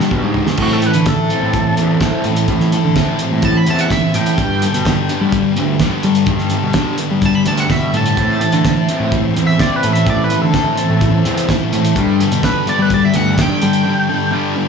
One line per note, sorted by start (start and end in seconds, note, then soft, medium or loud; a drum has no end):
0.00 0.57 G2 medium
0.00 0.58 G2 medium
0.00 0.58 D3 medium
0.00 0.58 G3 medium
0.00 0.59 G3 medium
0.00 0.59 B3 medium
0.00 0.59 D4 medium
0.00 0.59 G4 medium
0.00 snare medium
0.11 0.21 B2 medium
0.11 kick medium
0.11 mid tom medium
0.24 0.42 G#2 medium
0.34 floor tom medium
0.47 snare medium
0.57 0.86 A2 medium
0.57 1.78 A2 medium
0.57 0.82 A2 medium
0.57 0.82 E3 medium
0.57 0.82 C4 medium
0.57 kick loud
0.57 crash loud
0.62 0.72 F#4 medium
0.71 0.83 A4 medium
0.71 snare soft
0.82 1.05 A2 medium
0.82 1.05 E3 medium
0.82 2.25 A4 medium
0.82 1.07 B4 medium
0.82 closed hi-hat medium
0.94 1.13 D3 medium
0.94 closed hi-hat medium
1.06 1.28 A2 medium
1.06 1.28 E3 medium
1.06 2.00 E4 medium
1.06 2.46 A4 loud
1.06 kick medium
1.06 snare loud
1.06 closed hi-hat medium
1.30 1.52 A2 medium
1.30 1.53 E3 medium
1.30 1.77 C4 medium
1.30 1.53 C4 medium
1.30 closed hi-hat medium
1.42 1.70 A2 medium
1.53 1.75 A2 medium
1.53 2.73 E3 medium
1.53 1.76 E3 medium
1.53 kick loud
1.53 closed hi-hat medium
1.77 1.96 E2 medium
1.77 1.99 A2 medium
1.77 2.00 E3 medium
1.77 2.97 C4 medium
1.77 closed hi-hat medium
2.00 2.24 A2 medium
2.00 2.24 E3 medium
2.00 2.24 C4 medium
2.00 2.95 E4 medium
2.00 kick medium
2.00 snare medium
2.00 closed hi-hat medium
2.24 2.43 A2 medium
2.24 2.47 A2 medium
2.24 2.47 E3 medium
2.24 2.72 A4 medium
2.24 closed hi-hat medium
2.36 closed hi-hat medium
2.48 2.76 A2 loud
2.48 2.71 A2 medium
2.48 3.68 A2 medium
2.48 2.71 E3 medium
2.48 kick medium
2.48 closed hi-hat medium
2.60 snare soft
2.72 2.95 A2 medium
2.72 2.95 E3 medium
2.72 4.15 A4 medium
2.72 closed hi-hat medium
2.85 3.03 D3 loud
2.96 3.19 A2 medium
2.96 3.19 E3 medium
2.96 3.20 C4 medium
2.96 3.90 E4 medium
2.96 kick loud
2.96 snare medium
2.96 closed hi-hat medium
3.19 3.42 A2 medium
3.19 3.42 E3 medium
3.19 3.66 C4 medium
3.19 closed hi-hat medium
3.32 3.59 A2 medium
3.42 3.66 A2 medium
3.42 4.38 E3 medium
3.42 3.66 E3 medium
3.42 3.55 A5 loud
3.42 kick loud
3.42 closed hi-hat medium
3.57 3.68 B5 medium
3.66 3.86 E2 medium
3.66 3.90 A2 medium
3.66 3.90 E3 medium
3.66 4.39 C4 medium
3.66 3.91 C4 medium
3.66 3.80 A5 loud
3.66 closed hi-hat medium
3.79 3.91 F#5 medium
3.79 closed hi-hat medium
3.90 4.13 A2 medium
3.90 4.13 E3 medium
3.90 4.39 E4 medium
3.90 4.14 E5 medium
3.90 kick loud
3.90 snare medium
3.90 closed hi-hat medium
4.14 4.33 A2 medium
4.14 4.37 A2 medium
4.14 4.37 E3 medium
4.14 4.41 A4 medium
4.14 5.07 G5 medium
4.14 closed hi-hat medium
4.26 closed hi-hat medium
4.38 4.61 G2 medium
4.38 4.66 G2 medium
4.38 4.61 D3 medium
4.38 5.32 G3 medium
4.38 4.61 G3 medium
4.38 kick loud
4.38 closed hi-hat medium
4.62 4.84 G2 medium
4.62 4.84 D3 medium
4.62 6.04 A4 medium
4.62 closed hi-hat medium
4.74 4.92 B2 medium
4.74 closed hi-hat medium
4.85 5.07 G2 medium
4.85 5.08 D3 medium
4.85 5.79 D4 medium
4.85 kick loud
4.85 snare loud
4.85 closed hi-hat medium
5.09 5.32 G2 medium
5.09 5.32 D3 medium
5.09 5.32 G3 medium
5.09 5.55 B3 medium
5.09 closed hi-hat medium
5.21 5.49 G3 medium
5.32 5.55 G2 medium
5.32 5.55 D3 medium
5.32 6.27 G3 medium
5.32 kick loud
5.32 closed hi-hat medium
5.56 5.75 D2 medium
5.56 5.79 G2 medium
5.56 5.79 D3 medium
5.56 6.76 B3 medium
5.56 closed hi-hat medium
5.79 6.03 G2 medium
5.79 6.03 D3 medium
5.79 6.04 G3 medium
5.79 6.73 D4 medium
5.79 kick loud
5.79 snare loud
5.79 closed hi-hat medium
6.03 6.26 G2 medium
6.03 6.26 D3 medium
6.03 6.23 G3 medium
6.03 6.50 A4 medium
6.03 closed hi-hat medium
6.15 closed hi-hat medium
6.26 6.55 G2 loud
6.26 6.49 G2 medium
6.26 6.50 D3 medium
6.26 7.20 G3 medium
6.26 kick loud
6.26 closed hi-hat medium
6.39 snare soft
6.50 6.73 G2 medium
6.50 6.73 D3 medium
6.50 7.94 A4 medium
6.50 closed hi-hat medium
6.63 6.82 B2 medium
6.73 6.98 G2 medium
6.73 6.98 D3 medium
6.73 6.98 G3 medium
6.73 7.69 D4 medium
6.73 kick loud
6.73 snare medium
6.73 closed hi-hat medium
6.98 7.21 G2 medium
6.98 7.21 D3 medium
6.98 7.45 B3 medium
6.98 closed hi-hat medium
7.11 7.38 G3 medium
7.22 7.45 G2 medium
7.22 7.45 D3 medium
7.22 8.17 G3 medium
7.22 7.35 A5 loud
7.22 kick loud
7.22 closed hi-hat medium
7.35 7.46 B5 medium
7.45 7.64 D2 medium
7.45 7.69 G2 medium
7.45 7.70 D3 medium
7.45 7.70 G3 medium
7.45 8.18 B3 medium
7.45 7.58 A5 medium
7.45 closed hi-hat medium
7.57 7.71 F#5 medium
7.57 closed hi-hat medium
7.70 7.92 G2 medium
7.70 7.92 B2 medium
7.70 7.93 D3 medium
7.70 8.18 D4 medium
7.70 7.94 E5 medium
7.70 kick medium
7.70 snare medium
7.70 closed hi-hat medium
7.93 8.16 G2 medium
7.93 8.15 A2 medium
7.93 8.16 D3 medium
7.93 8.40 A4 medium
7.93 8.87 A5 loud
7.93 closed hi-hat medium
8.06 closed hi-hat medium
8.16 8.45 A2 loud
8.16 8.40 A2 medium
8.16 9.36 A2 medium
8.16 8.40 E3 medium
8.16 8.41 C4 medium
8.16 14.68 A4 medium
8.16 11.92 C5 medium
8.16 11.92 E5 medium
8.16 11.92 C6 medium
8.16 kick loud
8.16 closed hi-hat medium
8.41 8.63 A2 medium
8.41 8.63 E3 medium
8.41 9.83 A4 medium
8.41 closed hi-hat medium
8.52 8.71 D3 loud
8.52 closed hi-hat medium
8.64 8.86 A2 medium
8.64 8.87 E3 medium
8.64 9.58 E4 medium
8.64 kick loud
8.64 snare loud
8.64 closed hi-hat medium
8.88 9.11 A2 medium
8.88 9.11 E3 medium
8.88 9.35 C4 medium
8.88 9.12 C4 medium
8.88 closed hi-hat medium
9.00 9.27 A2 medium
9.12 9.34 A2 medium
9.12 10.31 E3 medium
9.12 9.34 E3 medium
9.12 kick loud
9.12 closed hi-hat medium
9.36 9.54 E2 medium
9.36 9.57 A2 medium
9.36 9.58 E3 medium
9.36 10.54 C4 medium
9.36 closed hi-hat medium
9.47 9.60 E5 loud
9.58 9.82 A2 medium
9.58 9.82 E3 medium
9.58 9.82 C4 medium
9.58 10.53 E4 medium
9.58 9.75 D5 medium
9.58 kick medium
9.58 snare medium
9.58 closed hi-hat medium
9.76 9.91 B4 medium
9.83 10.05 A2 medium
9.83 10.02 A2 medium
9.83 10.05 E3 medium
9.83 10.30 A4 medium
9.83 closed hi-hat medium
9.93 10.08 E5 medium
9.93 closed hi-hat medium
10.06 11.25 A2 medium
10.06 10.34 A2 loud
10.06 10.29 A2 medium
10.06 10.29 E3 medium
10.06 10.23 D5 medium
10.06 kick loud
10.06 closed hi-hat medium
10.24 10.39 B4 medium
10.30 10.52 A2 medium
10.30 10.52 E3 medium
10.30 11.73 A4 medium
10.30 closed hi-hat medium
10.41 10.61 D3 medium
10.41 11.32 A4 loud
10.54 10.77 A2 medium
10.54 10.78 E3 medium
10.54 10.78 C4 loud
10.54 11.48 E4 medium
10.54 kick loud
10.54 snare medium
10.54 closed hi-hat medium
10.77 11.00 A2 medium
10.77 11.00 E3 medium
10.77 11.24 C4 medium
10.77 closed hi-hat medium
10.89 11.17 A2 medium
11.01 11.23 A2 medium
11.01 11.96 E3 medium
11.01 11.23 E3 medium
11.01 kick loud
11.01 closed hi-hat medium
11.25 11.43 E2 medium
11.25 11.47 A2 medium
11.25 11.48 E3 medium
11.25 11.96 C4 medium
11.25 11.48 C4 medium
11.25 closed hi-hat medium
11.37 closed hi-hat medium
11.49 11.71 A2 medium
11.49 11.71 E3 medium
11.49 11.97 E4 medium
11.49 kick loud
11.49 snare loud
11.49 closed hi-hat medium
11.73 11.91 A2 medium
11.73 11.94 A2 medium
11.73 11.94 E3 medium
11.73 12.01 A4 medium
11.73 closed hi-hat medium
11.85 closed hi-hat medium
11.96 12.18 G2 medium
11.96 12.24 G2 loud
11.96 12.19 D3 medium
11.96 12.19 G3 medium
11.96 12.91 G3 medium
11.96 14.68 D5 medium
11.96 14.68 G5 medium
11.96 14.68 B5 medium
11.96 kick loud
11.96 closed hi-hat medium
12.20 12.41 G2 medium
12.20 12.41 D3 medium
12.20 13.38 A4 medium
12.20 closed hi-hat medium
12.32 12.50 B2 loud
12.32 closed hi-hat medium
12.43 12.65 G2 medium
12.43 12.65 D3 medium
12.43 13.36 D4 medium
12.43 12.67 B4 loud
12.43 kick loud
12.43 snare loud
12.43 closed hi-hat medium
12.67 12.88 G2 medium
12.67 12.89 D3 loud
12.67 12.90 G3 medium
12.67 13.13 B3 medium
12.67 12.79 D5 medium
12.67 closed hi-hat medium
12.79 13.06 G3 medium
12.79 12.92 B4 medium
12.90 13.12 G2 medium
12.90 13.12 D3 medium
12.90 13.83 G3 medium
12.90 kick loud
12.90 closed hi-hat medium
12.94 13.04 D5 medium
13.05 13.15 E5 medium
13.14 13.33 D2 medium
13.14 13.35 G2 medium
13.14 13.36 D3 medium
13.14 14.32 B3 medium
13.14 13.38 F#5 loud
13.14 closed hi-hat medium
13.37 13.60 G2 medium
13.37 13.60 D3 medium
13.37 13.60 G3 loud
13.37 14.32 D4 medium
13.37 14.31 G5 loud
13.37 kick medium
13.37 snare loud
13.37 closed hi-hat medium
13.61 13.83 G2 medium
13.61 13.83 D3 medium
13.61 13.80 G3 medium
13.61 14.08 A4 medium
13.61 closed hi-hat medium
13.73 closed hi-hat medium
13.85 14.06 G2 medium
13.85 14.06 D3 medium
13.85 14.68 G3 medium
14.09 14.30 G2 medium
14.09 14.30 D3 medium
14.09 14.68 A4 medium
14.31 14.54 G2 medium
14.31 14.55 D3 medium
14.31 14.55 G3 loud
14.31 14.68 D4 medium
14.55 14.68 G2 medium
14.55 14.68 D3 medium
14.55 14.68 B3 medium